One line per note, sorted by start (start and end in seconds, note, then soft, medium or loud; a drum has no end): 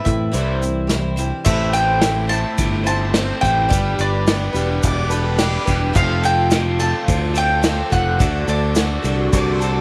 0.04 0.30 A2 medium
0.04 0.32 C4 soft
0.04 0.32 E4 soft
0.04 0.33 B4 soft
0.04 1.14 E5 medium
0.04 kick medium
0.04 closed hi-hat medium
0.04 shaker medium
0.09 0.33 A2 medium
0.09 0.33 E3 medium
0.32 1.31 C2 loud
0.32 0.89 C3 medium
0.32 0.61 C3 medium
0.32 0.90 E3 medium
0.32 0.86 G3 medium
0.32 0.88 C4 medium
0.32 0.89 E4 medium
0.32 0.90 C5 medium
0.32 closed hi-hat medium
0.32 shaker medium
0.36 0.62 E3 medium
0.36 0.62 G3 medium
0.62 0.88 C3 medium
0.62 0.89 E3 medium
0.62 closed hi-hat medium
0.62 shaker medium
0.87 1.16 C3 medium
0.87 1.16 E3 medium
0.87 1.17 G3 medium
0.87 1.17 C4 medium
0.87 1.16 E4 medium
0.87 1.15 C5 medium
0.87 snare loud
0.87 closed hi-hat medium
0.87 shaker medium
1.16 1.44 C3 medium
1.16 1.44 E3 medium
1.16 1.45 G3 medium
1.16 1.44 C4 medium
1.16 1.44 E4 soft
1.16 1.45 C5 medium
1.16 closed hi-hat medium
1.16 shaker medium
1.44 2.43 A1 loud
1.44 2.30 A2 medium
1.44 2.87 A2 medium
1.44 2.30 E3 medium
1.44 2.30 A3 medium
1.44 2.29 C4 medium
1.44 3.68 E4 medium
1.44 2.28 E4 medium
1.44 3.68 A4 medium
1.44 3.68 C5 medium
1.44 2.26 C5 medium
1.44 1.73 E5 loud
1.44 kick loud
1.44 crash loud
1.44 shaker loud
1.73 2.87 C5 medium
1.73 2.29 G5 loud
1.73 ride medium
1.73 shaker medium
2.01 2.57 E4 medium
2.01 snare loud
2.01 ride loud
2.01 shaker loud
2.27 2.86 A3 medium
2.27 3.42 A3 medium
2.27 2.85 C4 medium
2.27 2.83 E4 soft
2.27 2.82 C5 medium
2.27 2.86 A5 medium
2.27 ride medium
2.31 shaker medium
2.58 3.32 G1 medium
2.58 3.71 E4 medium
2.58 kick medium
2.58 ride loud
2.58 shaker loud
2.84 3.12 A3 soft
2.84 3.13 C4 soft
2.84 3.14 E4 soft
2.84 3.13 C5 medium
2.84 3.41 A5 loud
2.84 ride medium
2.84 shaker medium
2.88 3.72 C5 medium
3.13 3.42 A3 medium
3.13 3.42 C4 medium
3.13 3.71 C4 medium
3.13 3.40 E4 medium
3.13 3.40 C5 medium
3.13 snare loud
3.13 ride medium
3.13 shaker loud
3.41 3.67 A1 medium
3.41 3.70 A3 medium
3.41 3.68 A3 soft
3.41 3.68 C4 medium
3.41 3.69 E4 medium
3.41 3.70 C5 medium
3.41 3.94 G5 loud
3.41 kick medium
3.41 ride medium
3.41 shaker medium
3.69 3.95 G1 loud
3.69 4.54 G3 medium
3.69 4.55 G3 medium
3.69 4.54 D4 medium
3.69 5.94 D4 medium
3.69 4.54 G4 medium
3.69 5.94 G4 medium
3.69 5.93 B4 medium
3.69 4.51 B4 loud
3.69 kick loud
3.69 ride medium
3.69 shaker loud
3.99 4.47 G1 medium
3.99 5.11 B4 medium
3.99 5.64 D5 medium
3.99 ride medium
3.99 shaker medium
4.27 4.83 B3 medium
4.27 snare loud
4.27 ride loud
4.27 shaker loud
4.53 4.79 E1 medium
4.53 5.67 G3 medium
4.53 5.11 G4 medium
4.53 5.08 B4 medium
4.53 ride medium
4.53 shaker medium
4.57 5.12 D4 soft
4.83 5.56 E1 loud
4.83 5.96 B3 medium
4.83 5.13 D5 medium
4.83 kick medium
4.83 ride loud
4.83 shaker loud
5.09 5.39 G4 soft
5.09 5.39 A4 medium
5.09 5.39 B4 medium
5.09 5.96 B4 medium
5.09 ride medium
5.09 shaker medium
5.14 5.39 D4 soft
5.38 5.67 G3 medium
5.38 5.67 D4 medium
5.38 5.96 D4 medium
5.38 5.80 G4 loud
5.38 5.66 G4 medium
5.38 snare loud
5.38 ride loud
5.38 shaker loud
5.42 5.64 B4 medium
5.66 5.92 E1 medium
5.66 5.96 G3 medium
5.66 5.95 D4 medium
5.66 5.95 G4 medium
5.66 5.95 B4 medium
5.66 kick medium
5.66 ride medium
5.66 shaker medium
5.93 6.92 F1 loud
5.93 6.79 F3 medium
5.93 7.36 F3 medium
5.93 7.61 A3 medium
5.93 6.80 C4 medium
5.93 6.80 F4 medium
5.93 8.19 F4 medium
5.93 6.79 A4 medium
5.93 8.19 A4 medium
5.93 8.19 C5 medium
5.93 6.25 F5 loud
5.93 kick loud
5.93 crash loud
5.93 shaker loud
6.23 7.34 A4 medium
6.23 6.80 G5 loud
6.23 ride medium
6.23 shaker medium
6.51 7.05 F4 medium
6.51 snare loud
6.51 ride loud
6.51 shaker loud
6.79 7.92 A3 medium
6.79 7.37 C4 soft
6.79 7.35 F4 medium
6.79 7.33 A4 medium
6.79 7.37 A5 loud
6.79 ride medium
6.79 shaker medium
7.06 7.81 D2 loud
7.06 8.20 F4 medium
7.06 kick medium
7.06 ride medium
7.06 shaker loud
7.34 7.62 F4 soft
7.34 7.63 A4 medium
7.34 8.47 A4 medium
7.34 7.92 G5 loud
7.34 ride medium
7.34 shaker medium
7.38 7.61 C4 soft
7.61 7.91 A3 medium
7.61 7.91 C4 medium
7.61 8.20 C4 medium
7.61 7.92 F4 medium
7.61 7.89 A4 medium
7.61 snare loud
7.61 ride medium
7.61 shaker loud
7.90 8.17 F1 medium
7.90 8.19 A3 medium
7.90 8.20 C4 soft
7.90 8.21 F4 medium
7.90 8.19 A4 medium
7.90 8.50 F#5 loud
7.90 kick medium
7.90 ride medium
7.90 shaker medium
8.19 8.45 D2 medium
8.19 9.04 D3 medium
8.19 9.81 A3 medium
8.19 9.04 D4 medium
8.19 9.03 F#4 medium
8.19 9.81 F#4 medium
8.19 9.81 A4 medium
8.19 9.02 A4 loud
8.19 9.81 D5 medium
8.19 kick loud
8.19 ride medium
8.19 shaker medium
8.48 8.97 D2 medium
8.48 9.59 A4 medium
8.48 9.81 D5 medium
8.48 ride medium
8.48 shaker medium
8.75 9.32 F#4 medium
8.75 snare loud
8.75 ride medium
8.75 shaker loud
9.02 9.29 C2 medium
9.02 9.81 D3 medium
9.02 9.61 D4 soft
9.02 9.60 F#4 medium
9.02 9.58 A4 medium
9.02 ride medium
9.02 shaker medium
9.33 9.81 C2 loud
9.33 9.81 F#4 medium
9.33 9.56 D5 medium
9.33 kick medium
9.33 ride loud
9.33 shaker loud
9.54 9.74 C5 medium
9.59 9.81 F#4 soft
9.59 9.81 A4 medium
9.59 ride medium
9.59 shaker medium
9.64 9.81 D4 soft
9.73 9.81 D5 medium